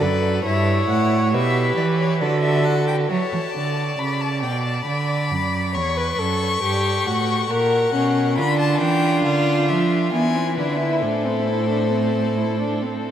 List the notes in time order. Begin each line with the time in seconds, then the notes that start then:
Already playing: D5
0.01 F#2 A4 B4
0.45 G2 E4 C#5 E5
0.89 A2 F#5
1.33 B2 G4 B4 E5
1.77 E3 D5
1.99 C#5
2.21 D3 F#4 A4 D5
2.43 E5
2.65 F#5
2.88 G5
3.10 F#3 C#5 A5
3.33 E3
3.55 D3 D5
3.99 C#3 B5
4.21 A5
4.42 B2 G5
4.65 A5
4.87 D3 B5
5.31 F#2
5.75 E2 C#5 C#6
5.97 B4
6.19 F#2 A4
6.62 G2 G4
7.06 A2 F#4
7.50 A#2 A#4 F#5
7.94 B2 C#4
8.38 D3 D4 F4 B5
8.59 A5
8.81 E3 G5
9.25 D3 F5
9.68 F3 E5
10.13 E3 B3 E4 G#5
10.35 C4
10.57 D3 D4 B4
10.80 E4
11.02 A2 D4 A4 C5
11.25 C4
11.47 E4
11.70 D4
11.92 C4
12.37 E4
12.60 D4
12.82 C4